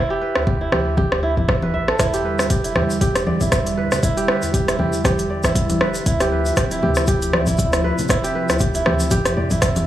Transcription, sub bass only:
0.36 D2
0.72 D2
1.49 E2
1.74 A1
1.99 E2
2.76 E2
4.42 E2
4.79 E2
5.81 E1
6.06 D2
6.82 D2
8.49 D2
8.86 D2
9.11 F2

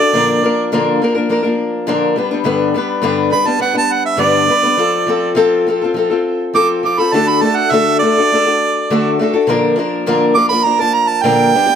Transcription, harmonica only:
Already playing: D5
3.32 B5
3.47 A5
3.62 F#5
3.78 A5
3.93 F#5
4.06 E5
4.20 D5
6.55 D6
6.85 D6
6.99 B5
7.13 A5
7.28 B5
7.41 A5
7.56 F#5
7.72 E5
7.99 D5
10.35 D6
10.49 B5
10.64 A#5
10.81 A5
10.94 A#5
11.08 A5
11.22 G5

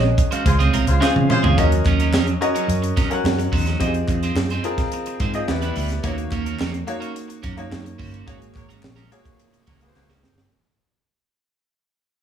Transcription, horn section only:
0.46 G#3 F4 C5
0.88 G#3 F4 C5
1.29 G#3 F4 C5
8.55 A#3 F#4 C#5
9.67 A#3 F#4 C#5
9.95 A#3 F#4 C#5

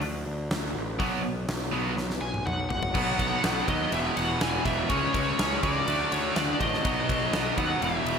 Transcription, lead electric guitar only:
2.21 G#5
2.46 F#5
2.69 F#5
3.68 D#5
3.93 E5
4.16 F#5
4.42 G#5
4.66 E5
4.89 C#5
5.13 C#5
5.63 D5
6.13 C#5
6.37 D5
6.61 D#5
7.58 F#5
7.83 E5

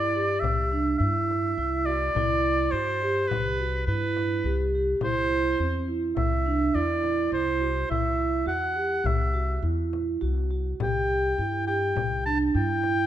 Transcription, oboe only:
Already playing: D5
0.40 E5
0.98 E5
1.86 D5
2.71 C5
3.28 B4
3.87 B4
5.04 C5
6.17 E5
6.75 D5
7.33 C5
7.90 E5
8.47 F#5
9.06 E5
10.83 G5
11.67 G5
12.26 A5
12.56 G5

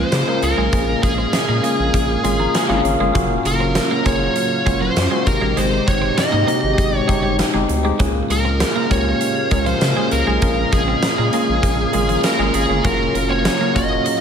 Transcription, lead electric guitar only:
Already playing: C5
0.43 A#4
1.03 G#4
3.47 A#4
4.06 C#5
4.82 C5
5.27 A#4
5.58 C5
5.88 C#5
6.18 D#5
6.98 C#5
8.31 A#4
8.92 C#5
9.67 C5
10.12 A#4
10.73 G#4
12.24 A#4
12.55 G#4
12.85 A#4
13.30 C#5
13.76 D#5

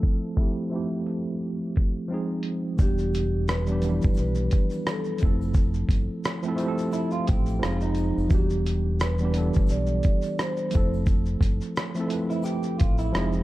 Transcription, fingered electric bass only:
2.80 E1
4.05 G1
4.18 B1
5.23 F1
5.89 G1
7.30 A1
7.63 F1
8.18 F1
8.31 E1
9.57 G1
9.70 B1
10.76 F1
11.41 G1
12.82 A1
13.15 F1

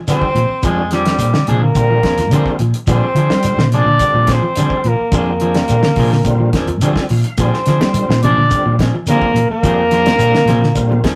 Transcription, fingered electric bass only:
0.35 A#2
0.49 muted fingered electric bass stroke
0.63 F2
1.19 A#2
1.48 A#2
1.75 A#2
2.03 F2
2.18 F2
2.33 D3
2.59 A#2
2.87 A#2
3.15 D3
3.30 G3
3.57 A#2
3.85 A#2
4.14 A#2
4.84 A#2
4.99 muted fingered electric bass stroke
5.12 F2
5.70 A#2
5.96 A#2
6.25 A#2
6.53 F2
6.68 F2
6.83 D3
7.10 A#2
7.38 A#2
7.67 D3
7.79 G3
8.09 A#2
8.37 A#2
8.66 A#2
9.34 A#2
9.50 muted fingered electric bass stroke
9.63 F2
10.18 A#2
10.45 A#2
10.76 A#2
11.04 F2

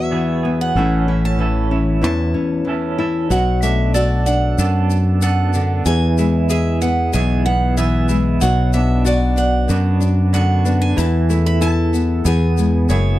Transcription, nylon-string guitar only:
Already playing: E2 B3 F#4
0.12 E3
0.45 B3
0.76 A2 E3 A3 C#4 E4
1.08 E4
1.39 E3
1.71 C#4
2.02 E2 E4
2.34 C#4
2.65 E3
2.98 E4
3.30 B2 F#4
3.63 A3
3.95 F#4
4.28 D4
4.59 F#2
5.55 D3
5.87 E2 G#4
6.19 G#3
6.51 G#4
6.83 B3
7.14 B2
7.46 B3
7.78 E3
8.10 G#3
8.41 B2 F#4
8.74 B3
9.05 F#4
9.36 D4
9.68 F#2
10.00 D4
10.33 D3
10.65 B3
10.96 E2 E4
11.30 A3
11.61 E4
11.93 B3
12.26 E2 G#4
12.58 G#3
12.89 F#2

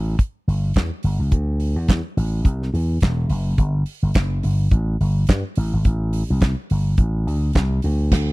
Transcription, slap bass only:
Already playing: A1
0.47 G1
0.76 E2
1.04 G1
1.19 C#2
1.32 D2
1.76 E2
2.17 A1
2.45 C2
2.73 E2
3.02 E1
3.30 F#1
3.59 G1
4.02 G1
4.15 F#1
4.43 G1
4.71 A1
5.00 G1
5.29 G2
5.57 A1
5.73 G#1
5.85 A1
6.30 C2
6.71 G1
6.98 A1
7.27 D2
7.55 C2
7.84 D2
8.12 D2

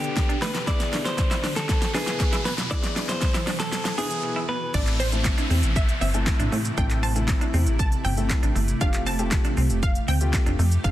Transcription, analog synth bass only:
4.74 A1
5.50 E2
5.63 A1
6.01 G1
6.40 A1
6.52 A2
6.78 A1
7.54 E2
7.67 A1
8.05 G1
8.43 A1
8.56 G1
8.81 F1
9.57 C2
9.70 F1
10.08 D2
10.46 F1
10.59 F2
10.85 F1

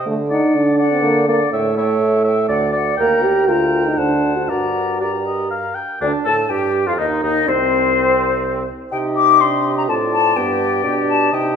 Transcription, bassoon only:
0.06 D3
0.54 D3
1.02 D3
1.52 A2
2.00 A2
2.49 D2
2.99 D#2
3.48 D2
3.97 D2
4.49 G2
6.01 D2
6.25 A2
6.50 G2
6.87 F2
6.99 D#2
7.23 D#2
7.48 C2
8.93 C3
9.89 A2
10.36 G2
10.84 B2
11.32 C3

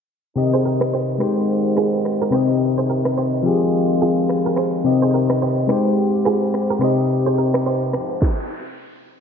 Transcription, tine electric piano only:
0.36 C3 C4 G4 D#5
1.18 G#3 D#4 G4
1.23 C5
2.31 C3 C4 G4
2.35 D#5
3.42 F3 C4 G4
3.48 G#4
4.84 C3 C4 G4 D#5
5.67 G#3 D#4 G4
5.72 C5
6.79 C3 C4 G4
6.84 D#5

